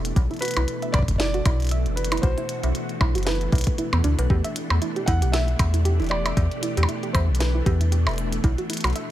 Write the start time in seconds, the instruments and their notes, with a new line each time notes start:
Already playing: fm bass E1, string machine B2 E3 A3 D4 G4
0.05 closed hi-hat
0.16 fm bass B1, kick, closed hi-hat
0.31 synth arpeggio sound E4, closed hi-hat
0.34 closed hi-hat
0.37 closed hi-hat
0.39 felt piano B4, closed hi-hat
0.42 synth arpeggio sound F#4, closed hi-hat
0.45 closed hi-hat
0.48 closed hi-hat
0.51 closed hi-hat
0.54 closed hi-hat
0.57 fm bass B1, synth arpeggio sound E4, closed hi-hat, percussion blips
0.68 closed hi-hat
0.82 synth arpeggio sound E5, closed hi-hat
0.92 fm bass B1, felt piano D5, kick, closed hi-hat, percussion blips
0.99 kick
1.02 kick
1.08 fm bass F#1, kick, closed hi-hat
1.11 kick
1.16 synth arpeggio sound E4, felt piano D5, kick, snare, closed hi-hat
1.34 synth arpeggio sound F#4, closed hi-hat
1.46 fm bass B1, synth arpeggio sound E4, kick, closed hi-hat, percussion blips
1.60 closed hi-hat
1.62 string machine F#4, closed hi-hat
1.65 closed hi-hat
1.67 closed hi-hat
1.69 closed hi-hat
1.71 synth arpeggio sound E5, closed hi-hat
1.86 fm bass F#1, closed hi-hat
1.96 felt piano B4, closed hi-hat
2.05 closed hi-hat
2.12 synth arpeggio sound E4, closed hi-hat, percussion blips
2.17 closed hi-hat
2.22 fm bass B1, synth arpeggio sound F#4, felt piano C5, kick, closed hi-hat
2.38 synth arpeggio sound E4, closed hi-hat
2.49 closed hi-hat
2.63 fm bass B1, synth arpeggio sound E5, closed hi-hat
2.75 closed hi-hat
2.89 closed hi-hat
3.01 fm bass B1, synth arpeggio sound E4, kick, percussion blips
3.15 fm bass F#1, synth arpeggio sound F#4, closed hi-hat
3.18 closed hi-hat
3.23 felt piano B4, snare, closed hi-hat
3.27 synth arpeggio sound E4, closed hi-hat
3.31 closed hi-hat
3.35 closed hi-hat
3.41 closed hi-hat
3.52 fm bass B1, synth arpeggio sound E4, kick, closed hi-hat
3.55 closed hi-hat
3.58 closed hi-hat
3.61 closed hi-hat
3.64 kick, closed hi-hat
3.78 synth arpeggio sound E4, closed hi-hat
3.93 fm bass E2, synth arpeggio sound B3, closed hi-hat, percussion blips
4.04 fm bass D2, synth arpeggio sound D4, closed hi-hat
4.19 fm bass B1, synth arpeggio sound B4, closed hi-hat
4.30 fm bass E2, synth arpeggio sound G4, kick
4.45 synth arpeggio sound E5, closed hi-hat
4.56 closed hi-hat
4.70 fm bass E2, percussion blips
4.82 synth arpeggio sound E4, closed hi-hat
4.96 synth arpeggio sound G4, closed hi-hat
5.06 fm bass E2, synth arpeggio sound E4, felt piano F#5, kick, closed hi-hat
5.22 fm bass B1, synth arpeggio sound G4, closed hi-hat
5.32 felt piano E5, synth arpeggio sound E5, snare, closed hi-hat
5.40 string machine G4
5.48 closed hi-hat
5.59 fm bass E2, kick, closed hi-hat, percussion blips
5.74 synth arpeggio sound E4, closed hi-hat
5.85 synth arpeggio sound G4, closed hi-hat
6.00 fm bass E1, synth arpeggio sound E4, closed hi-hat
6.02 closed hi-hat
6.04 closed hi-hat
6.07 closed hi-hat
6.09 synth arpeggio sound G4, felt piano D5, closed hi-hat, percussion blips
6.25 synth arpeggio sound E5, closed hi-hat, percussion blips
6.37 fm bass E2, kick, closed hi-hat
6.51 closed hi-hat
6.63 synth arpeggio sound E4, closed hi-hat
6.77 fm bass E2, synth arpeggio sound G4, closed hi-hat
6.83 percussion blips
6.89 synth arpeggio sound E4, closed hi-hat
7.03 synth arpeggio sound G4, closed hi-hat
7.13 fm bass E2, felt piano C5, synth arpeggio sound E5, kick, closed hi-hat, percussion blips
7.29 fm bass B1
7.35 closed hi-hat
7.39 felt piano B4, snare, closed hi-hat
7.55 synth arpeggio sound E4
7.66 fm bass E2, synth arpeggio sound G4, kick, closed hi-hat
7.81 synth arpeggio sound E4, closed hi-hat
7.92 synth arpeggio sound G4, closed hi-hat
8.07 fm bass E1, synth arpeggio sound E5, closed hi-hat, percussion blips
8.09 closed hi-hat
8.11 closed hi-hat
8.13 closed hi-hat
8.16 closed hi-hat
8.18 closed hi-hat
8.32 closed hi-hat
8.44 fm bass B1, string machine B2, synth arpeggio sound E4, kick, closed hi-hat
8.58 synth arpeggio sound F#4, closed hi-hat
8.70 synth arpeggio sound E4, closed hi-hat
8.73 closed hi-hat
8.77 closed hi-hat
8.81 closed hi-hat
8.84 fm bass B1, synth arpeggio sound F#4, closed hi-hat, percussion blips
8.87 closed hi-hat
8.90 closed hi-hat
8.93 closed hi-hat
8.96 synth arpeggio sound E5, closed hi-hat